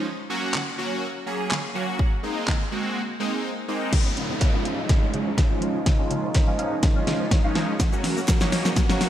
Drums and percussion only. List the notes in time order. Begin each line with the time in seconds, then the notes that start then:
0.54 snare, clap
1.51 snare, clap
1.99 kick
2.48 kick, snare, clap
3.93 kick, snare, closed hi-hat, crash
4.17 closed hi-hat
4.41 kick, snare, closed hi-hat
4.65 closed hi-hat
4.89 kick, snare, closed hi-hat
5.14 closed hi-hat
5.38 kick, snare, closed hi-hat
5.62 closed hi-hat
5.86 kick, snare, closed hi-hat
6.11 closed hi-hat
6.34 kick, snare, closed hi-hat
6.59 closed hi-hat
6.83 kick, snare, closed hi-hat
7.07 snare, closed hi-hat
7.31 kick, snare, closed hi-hat
7.55 snare, closed hi-hat
7.80 kick, snare, closed hi-hat, shaker
7.93 shaker
8.04 snare, open hi-hat, shaker
8.17 shaker
8.28 kick, snare, clap, closed hi-hat, shaker
8.41 snare, shaker
8.52 snare, open hi-hat, shaker
8.65 snare, shaker
8.76 kick, snare, closed hi-hat, shaker
8.89 snare, shaker
9.01 snare, open hi-hat, shaker